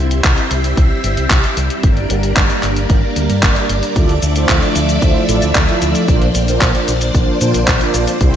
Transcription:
Already playing: fingered electric bass C2, string machine G3 C4 E4 C5 E5
0.11 closed hi-hat
0.24 fingered electric bass C2, kick, clap, closed hi-hat
0.38 closed hi-hat
0.51 fingered electric bass C2, closed hi-hat
0.64 closed hi-hat
0.77 fingered electric bass C2, kick, closed hi-hat
1.04 fingered electric bass G1, closed hi-hat
1.17 fingered electric bass C2, closed hi-hat
1.30 fingered electric bass C2, kick, clap, closed hi-hat
1.44 closed hi-hat
1.57 fingered electric bass C2, closed hi-hat
1.70 closed hi-hat
1.83 fingered electric bass G1, string machine A#3 D4 A#4 D5, kick, closed hi-hat
1.97 closed hi-hat
2.10 fingered electric bass G1, closed hi-hat
2.23 closed hi-hat
2.37 fingered electric bass G1, kick, clap, closed hi-hat
2.50 closed hi-hat
2.63 fingered electric bass G1, clap, closed hi-hat
2.76 closed hi-hat
2.90 fingered electric bass G1, kick, closed hi-hat
3.16 fingered electric bass D2, closed hi-hat
3.29 fingered electric bass G2, closed hi-hat
3.43 fingered electric bass G1, kick, clap, closed hi-hat
3.56 closed hi-hat
3.69 fingered electric bass G1, closed hi-hat
3.83 closed hi-hat
3.96 fingered electric bass D2, string machine F3 A3 E5, analog polysynth E4 F4 A4 D5, kick, closed hi-hat, cabasa
4.09 closed hi-hat
4.22 fingered electric bass D2, closed hi-hat, cabasa
4.36 analog polysynth E4 F4 A4 C5, closed hi-hat, cabasa
4.49 fingered electric bass D2, kick, clap, closed hi-hat, cabasa
4.62 analog polysynth E4 F4 A4 D5, closed hi-hat
4.76 fingered electric bass D2, closed hi-hat, cabasa
4.89 closed hi-hat, cabasa
5.02 fingered electric bass D2, analog polysynth E4 F4 A4 C5, kick, closed hi-hat, cabasa
5.29 fingered electric bass A1, analog polysynth E4 F4 A4 D5, closed hi-hat, cabasa
5.42 fingered electric bass D2, closed hi-hat, cabasa
5.55 fingered electric bass D2, kick, clap, closed hi-hat, cabasa
5.68 analog polysynth E4 F4 A4 E5, closed hi-hat
5.82 fingered electric bass D2, closed hi-hat, cabasa
5.95 closed hi-hat, cabasa
6.08 fingered electric bass A#1, string machine A#3 C5 D5, analog polysynth D4 F4 A#4 C5, kick, closed hi-hat, cabasa
6.22 closed hi-hat
6.35 fingered electric bass A#1, closed hi-hat, cabasa
6.48 analog polysynth D4 F4 A#4 C5, closed hi-hat, cabasa
6.61 fingered electric bass A#1, kick, clap, closed hi-hat, cabasa
6.75 analog polysynth D4 F4 A#4 C5, closed hi-hat
6.88 fingered electric bass A#1, closed hi-hat, cabasa
7.01 closed hi-hat, cabasa
7.15 fingered electric bass A#1, analog polysynth D4 F4 A#4 C5, kick, closed hi-hat, cabasa
7.41 fingered electric bass A#2, analog polysynth D4 F4 A#4 C5, closed hi-hat, cabasa
7.54 fingered electric bass A#1, closed hi-hat, cabasa
7.68 fingered electric bass A#1, kick, clap, closed hi-hat, cabasa
7.81 analog polysynth D4 F4 A#4 D5, closed hi-hat
7.94 fingered electric bass A#1, closed hi-hat, cabasa
8.07 closed hi-hat, cabasa
8.21 fingered electric bass C2, string machine G3 C4 E4 E5, analog polysynth C4 E4 G4 C5, kick, closed hi-hat, cabasa

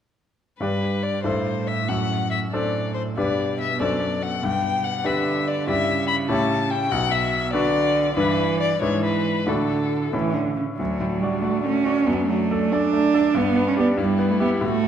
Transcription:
0.59 grand piano G2 D4 G4 D5, cello G2, violin B4
1.03 violin D5
1.24 grand piano G2 E4 A4 C5, cello A2, violin C5
1.67 violin E5
1.88 grand piano F#2, violin F#5
2.31 violin E5
2.52 cello A2, grand piano D4 A4 C5, violin D5
2.94 violin C5
3.16 grand piano G2 D4 G4 B4, cello B2, violin D5
3.60 violin E5
3.80 grand piano F#2 D4 A4 C5, violin D5
4.22 violin F#5
4.41 grand piano G2, cello B2, violin G5
4.84 violin F#5
5.04 cello D3, grand piano D4 G4 B4, violin E5
5.48 violin D5
5.67 grand piano G2 E4 G4 D5, cello C#3, violin E5
6.07 violin B5
6.29 grand piano A2 E4 G4 C#5, violin A5
6.70 violin G5
6.91 grand piano B1, cello B2, violin F#5
7.12 violin E5
7.53 cello D3, grand piano D4 F#4 B4, violin D5
8.16 grand piano G2 D4 E4 B4, cello E3, violin B4
8.60 violin D5
8.82 grand piano G#2 D4 E4 B4, cello E3, violin C#5
9.04 violin B4
9.47 grand piano A2 D4 F#4 D5, cello D3, violin A4
10.13 grand piano A2 C#4 E4 E5, cello E3
10.34 cello D3
10.56 cello C#3
10.78 grand piano D2, cello F#3, violin D4
11.00 grand piano A2
11.21 cello G3, grand piano F#4 D5
11.42 cello A3, grand piano F#4 D5
11.65 grand piano A3, cello C#4
11.86 grand piano F#4 D5
12.07 grand piano F#2, cello B3
12.28 grand piano F#3, cello A3
12.51 grand piano A4 D5
12.72 cello D4, grand piano A4 D5
12.93 grand piano A3
13.14 grand piano A4 D5
13.35 grand piano G2, cello B3, violin D4
13.56 grand piano B3
13.68 cello C#4
13.77 cello B3, grand piano G4 D5
13.97 grand piano G2, cello G3, violin E4
14.19 grand piano B3
14.31 cello A3
14.40 cello B3, grand piano G4 E5
14.61 grand piano A2, cello A3, violin F#4
14.83 grand piano A3

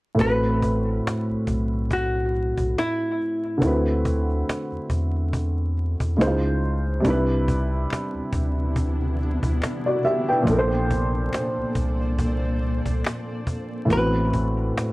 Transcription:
0.15 upright piano A2 A3
0.19 sub bass A1, upright piano C4 F#4, hollow-body jazz guitar B4, cajon bass
0.25 upright piano B4
0.43 cajon slap
0.62 cajon bass
0.87 cajon slap
1.07 cajon slap
1.30 sub bass B1, cajon slap
1.47 sub bass B1, cajon bass
1.73 cajon slap
1.91 hollow-body jazz guitar F#4, cajon bass
2.15 cajon slap
2.35 cajon slap
2.58 sub bass B1, cajon bass
2.78 hollow-body jazz guitar E4, cajon slap
3.01 cajon slap
3.21 cajon slap
3.44 cajon slap
3.58 upright piano D3 A3 C4
3.62 sub bass D2, upright piano E4 F#4, cajon bass
3.68 upright piano B4
3.86 cajon slap
4.05 cajon bass
4.30 cajon slap
4.49 cajon slap
4.72 sub bass E2, cajon slap
4.90 sub bass E2, cajon bass
5.16 cajon slap
5.33 cajon bass
5.58 cajon slap
5.77 cajon slap
6.00 sub bass E2, cajon bass
6.17 sub bass C#2, upright piano C#3 G#3 D#4 E4
6.21 upright piano C5, cajon slap
6.27 upright piano F4
6.64 cajon slap
6.87 cajon slap
7.00 upright piano C3 G3, ambient pad C3
7.04 sub bass C2, ambient pad B3 D4 E4, upright piano D4 E4, cajon bass
7.10 upright piano B4
7.29 cajon slap
7.48 cajon bass
7.73 cajon slap
7.90 finger snap, cajon slap
8.14 sub bass D2, cajon slap
8.33 sub bass D2, cajon bass
8.59 cajon slap
8.76 cajon bass
9.01 cajon slap
9.20 cajon slap
9.43 sub bass D2, cajon bass
9.62 finger snap, cajon slap
9.86 upright piano F#4 D5, cajon slap
10.05 upright piano G4 E5, cajon slap
10.28 upright piano B4 G5, cajon slap
10.42 upright piano A#2 F3
10.47 sub bass A#1, ambient pad A#3 A4 C5 D5, upright piano D4 A4, cajon bass
10.52 upright piano A#4
10.59 upright piano C5
10.71 cajon slap
10.91 cajon bass
11.14 cajon slap
11.33 finger snap, cajon slap
11.57 sub bass C2, cajon slap
11.75 sub bass C2, cajon bass
12.01 cajon slap
12.19 cajon bass
12.43 cajon slap
12.62 cajon slap
12.86 sub bass C2, cajon bass
13.04 finger snap, cajon slap
13.29 cajon slap
13.47 cajon bass
13.72 cajon slap
13.85 upright piano A2 E3
13.90 sub bass A1, upright piano B3 F#4, hollow-body jazz guitar B4, cajon bass
13.95 upright piano C4 B4
14.14 cajon slap
14.33 cajon bass
14.58 cajon slap
14.77 cajon slap

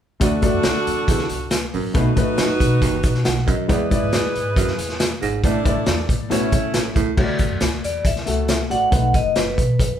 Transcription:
0.20 baritone saxophone D2, upright bass D2, grand piano A3 F#4 D5, saxophone section D4 F#4 A4, kick, closed hi-hat
0.42 grand piano A3 F#4 D5, kick, closed hi-hat
0.54 upright bass F#2
0.63 upright bass D2, snare, closed hi-hat
0.87 upright bass E2, closed hi-hat
1.08 upright bass D2, baritone saxophone E2, kick, closed hi-hat
1.19 snare
1.29 upright bass C#2, closed hi-hat
1.51 snare, closed hi-hat
1.73 upright bass A1, baritone saxophone F#2, open hi-hat
1.94 upright bass B1, baritone saxophone B2, grand piano A3 D#4 B4, saxophone section D#4 F#4 B4, kick, closed hi-hat
2.16 upright bass A1, grand piano A3 D#4 B4, kick, closed hi-hat
2.38 upright bass F#1, snare, closed hi-hat
2.60 upright bass B2, kick, closed hi-hat
2.81 upright bass F#1, baritone saxophone D#2, kick, closed hi-hat
3.03 upright bass B2, kick, closed hi-hat
3.15 snare
3.25 upright bass B1, grand piano F#5, snare, closed hi-hat
3.47 baritone saxophone F#2, grand piano D#5, kick, closed hi-hat
3.68 baritone saxophone E2, upright bass E2, grand piano G#3 E4 D5, saxophone section E4 G#4 B4, kick, closed hi-hat
3.90 grand piano G#3 E4 D5, kick, closed hi-hat
4.03 upright bass G#2
4.12 upright bass E2, snare, closed hi-hat
4.35 upright bass G#2, closed hi-hat
4.56 baritone saxophone F#2, upright bass F#2, kick, closed hi-hat
4.67 snare
4.79 upright bass E2, closed hi-hat
4.89 snare
5.00 snare, closed hi-hat
5.22 upright bass G#1, baritone saxophone G#2, closed hi-hat
5.43 upright bass A1, baritone saxophone A2, grand piano A3 E4 D5, saxophone section D4 E4 A4, kick, closed hi-hat
5.64 grand piano A3 E4 D5, kick, closed hi-hat
5.77 upright bass A1
5.86 upright bass E2, snare, closed hi-hat
6.09 upright bass A2, kick, closed hi-hat
6.30 upright bass A1, baritone saxophone B2, grand piano A3 E4 C#5, saxophone section A3 C#4 E4, closed hi-hat
6.52 upright bass A2, kick, closed hi-hat
6.74 upright bass A1, snare, closed hi-hat
6.95 upright bass C#2, baritone saxophone A2, kick, closed hi-hat
7.17 upright bass D2, grand piano A3 F#4 C#5, kick, crash
7.23 grand piano D5
7.39 kick, closed hi-hat
7.51 upright bass F#2
7.60 upright bass D2, snare, closed hi-hat
7.83 upright bass E2, vibraphone D5, closed hi-hat
8.05 upright bass D2, vibraphone E5, kick, closed hi-hat
8.16 snare
8.26 upright bass C#2, grand piano A3 F#4 A4, closed hi-hat
8.48 snare, closed hi-hat
8.70 upright bass A1, grand piano A3 F#4 D5, vibraphone F#5, closed hi-hat
8.91 upright bass B1, grand piano A3 D#4 B4, kick, closed hi-hat
9.14 upright bass F#1, vibraphone D#5, kick, closed hi-hat
9.36 upright bass F#1, vibraphone B4, snare, closed hi-hat
9.58 upright bass B2, kick, closed hi-hat
9.79 upright bass F#1, kick, closed hi-hat

